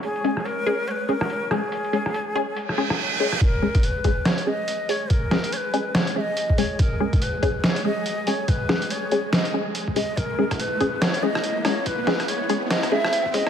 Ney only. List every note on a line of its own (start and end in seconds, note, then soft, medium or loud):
0.03 0.47 G#4 loud
0.45 0.89 A#4 loud
0.88 1.10 B4 loud
0.88 0.92 C#5 loud
1.09 1.53 A#4 loud
1.51 2.99 G#4 loud
3.41 3.85 A#4 medium
3.84 4.28 B4 loud
4.27 4.49 C#5 loud
4.47 4.91 D#5 loud
4.90 5.12 C#5 loud
5.11 5.55 A#4 loud
5.53 5.97 B4 loud
5.53 5.58 C#5 medium
5.95 6.18 C#5 loud
6.16 6.22 E5 loud
6.21 6.60 D#5 loud
6.59 6.81 C#5 medium
6.80 7.23 A#4 medium
7.22 7.66 B4 loud
7.64 7.85 C#5 medium
7.64 7.69 D#5 medium
7.86 8.29 D#5 loud
8.28 8.50 C#5 medium
8.49 8.93 B4 loud
8.91 9.33 C#5 medium
9.33 9.53 D#5 medium
9.96 10.19 D#5 medium
10.17 10.61 A#4 medium
10.60 11.03 B4 medium
11.02 11.24 C#5 loud
11.23 11.67 D#5 loud
11.65 11.88 C#5 medium
11.87 12.30 B4 loud
12.29 12.70 C#5 loud
12.71 12.93 D#5 loud
12.92 13.36 E5 loud
13.34 13.50 D#5 loud